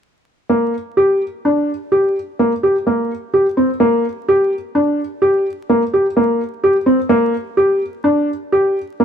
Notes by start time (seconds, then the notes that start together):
0.49 A#3
0.97 G4
1.45 D4
1.92 G4
2.39 A#3
2.63 G4
2.87 A#3
3.34 G4
3.57 C4
3.80 A#3
4.29 G4
4.75 D4
5.22 G4
5.69 A#3
5.93 G4
6.17 A#3
6.64 G4
6.86 C4
7.09 A#3
7.57 G4
8.04 D4
8.52 G4
9.00 A#3